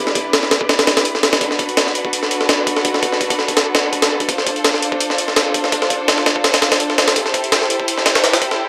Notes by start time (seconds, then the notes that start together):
Already playing: D4 E4 G4 B4
0.07 snare
0.15 kick, closed hi-hat
0.33 snare, closed hi-hat
0.43 snare
0.51 snare, closed hi-hat
0.61 kick
0.69 snare, closed hi-hat
0.79 snare, closed hi-hat
0.87 snare, closed hi-hat
0.97 snare, closed hi-hat
1.05 closed hi-hat
1.15 snare
1.23 snare, closed hi-hat
1.33 snare, closed hi-hat
1.41 D4 F#4 A4, kick, closed hi-hat
1.51 snare
1.59 kick, closed hi-hat
1.69 closed hi-hat
1.77 snare, closed hi-hat
1.87 snare
1.95 closed hi-hat
2.05 kick
2.13 closed hi-hat
2.23 snare
2.31 closed hi-hat
2.41 snare
2.49 snare, closed hi-hat
2.67 kick, closed hi-hat
2.77 snare
2.85 kick, closed hi-hat
2.94 snare
3.03 kick, closed hi-hat
3.12 snare
3.21 kick, closed hi-hat
3.30 kick, closed hi-hat
3.39 snare
3.48 kick, closed hi-hat
3.57 snare, closed hi-hat
3.75 snare, closed hi-hat
3.93 kick, closed hi-hat
4.02 snare, closed hi-hat
4.20 kick, closed hi-hat
4.29 D4 F4 C5, kick, closed hi-hat
4.38 snare
4.47 kick, closed hi-hat
4.56 closed hi-hat
4.64 snare, closed hi-hat
4.74 snare
4.82 closed hi-hat
4.92 kick
5.00 closed hi-hat
5.10 snare
5.18 closed hi-hat
5.28 snare
5.36 snare, closed hi-hat
5.54 kick, closed hi-hat
5.64 snare
5.72 kick, closed hi-hat
5.82 snare
5.90 kick, closed hi-hat
6.08 snare, closed hi-hat
6.18 snare
6.26 snare, closed hi-hat
6.36 kick
6.44 snare, closed hi-hat
6.54 snare, closed hi-hat
6.62 snare, closed hi-hat
6.72 snare, closed hi-hat
6.80 closed hi-hat
6.90 snare
6.98 snare, closed hi-hat
7.08 snare, closed hi-hat
7.16 E4 G4, kick, closed hi-hat
7.26 snare
7.34 kick, closed hi-hat
7.44 closed hi-hat
7.52 snare, closed hi-hat
7.62 snare
7.70 closed hi-hat
7.80 kick
7.88 closed hi-hat
7.98 snare
8.06 snare, closed hi-hat
8.15 snare, closed hi-hat
8.24 snare, closed hi-hat
8.33 snare, closed hi-hat
8.42 kick, closed hi-hat
8.51 snare